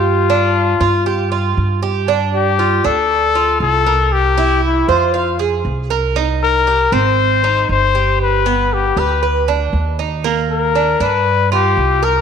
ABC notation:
X:1
M:4/4
L:1/8
Q:1/4=118
K:Gphr
V:1 name="Trumpet"
F6 z2 | z G2 =A3 A2 | G2 =E F2 z3 | z B2 c3 c2 |
=B2 G B2 z3 | z B2 =B2 G2 _B |]
V:2 name="Cuban tres"
G D2 F G F2 G | D2 F D2 F2 B- | B =E2 c f A2 B | E2 G C2 E2 G- |
G =B,2 G =B D2 E | B,2 D D2 F2 B |]
V:3 name="Upright bass" clef=bass
G,,3 G,,3 G,,2- | G,,3 D,,3 C,,2- | C,,3 F,,3 C,,2- | C,,3 A,,,3 G,,,2- |
G,,,3 D,,3 E,,2- | E,,3 G,,3 C,,2 |]